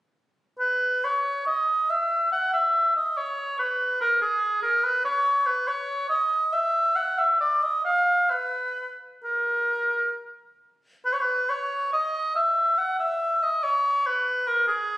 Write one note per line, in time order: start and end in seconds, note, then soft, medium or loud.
0.59 1.06 B4 medium
1.04 1.46 C#5 medium
1.46 1.92 D#5 soft
1.90 2.31 E5 medium
2.32 2.53 F#5 medium
2.53 2.95 E5 medium
2.96 3.19 D#5 medium
3.17 3.59 C#5 medium
3.59 4.00 B4 medium
4.01 4.21 A#4 medium
4.22 4.62 G#4 medium
4.62 4.85 A#4 medium
4.84 5.04 B4 medium
5.05 5.48 C#5 medium
5.46 5.69 B4 medium
5.67 6.09 C#5 medium
6.09 6.54 D#5 medium
6.53 6.97 E5 medium
6.96 7.20 F#5 medium
7.18 7.40 E5 medium
7.40 7.65 D5 medium
7.63 7.84 D#5 medium
7.85 8.32 F5 medium
8.30 8.92 B4 medium
9.24 10.11 A#4 soft
11.05 11.14 B4 medium
11.13 11.22 C#5 soft
11.20 11.51 B4 medium
11.49 11.92 C#5 medium
11.93 12.34 D#5 medium
12.36 12.80 E5 medium
12.78 12.99 F#5 medium
12.99 13.45 E5 medium
13.43 13.65 D#5 medium
13.63 14.08 C#5 medium
14.06 14.49 B4 medium
14.47 14.67 A#4 medium
14.67 14.97 G#4 medium